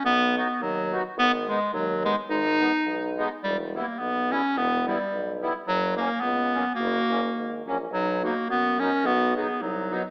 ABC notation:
X:1
M:2/4
L:1/16
Q:"Swing" 1/4=107
K:B
V:1 name="Clarinet"
z8 | z8 | z8 | z8 |
z8 | z8 | F6 z2 | D2 F2 F2 A2 |
F2 G2 D3 z |]
V:2 name="Accordion"
z2 [B,DF]2 z2 [B,DF]2 | z2 [G,B,D]2 z2 [G,B,D]2 | z2 [G,B,D]2 z2 [G,B,D]2 | z2 [=G,B,E]2 z2 [G,B,E]2 |
z2 [=G,B,E]2 z2 [G,B,E]2 | z2 [F,A,C]2 z2 [F,A,C]2 | z2 [F,A,C]2 z2 [F,A,C]2 | z2 [F,B,D]2 z2 [F,B,D]2 |
z2 [F,B,D]2 z2 [F,B,D]2 |]
V:3 name="Clarinet"
B,2 B,2 F,3 z | B,2 G,2 F,2 G,2 | D6 z2 | =G,2 A,2 B,2 C2 |
B,2 =G,4 z2 | F,2 A,2 B,4 | A,6 z2 | F,2 A,2 B,2 C2 |
B,2 B,2 F,3 z |]
V:4 name="Tuba" clef=bass
B,,,4 D,,4 | G,,,4 D,,4 | G,,,4 B,,,4 | E,,,4 B,,,4 |
E,,,4 B,,,4 | F,,,4 C,,4 | F,,,2 F,,,2 G,,,2 A,,,2 | B,,,4 F,,4 |
B,,,4 =C,,4 |]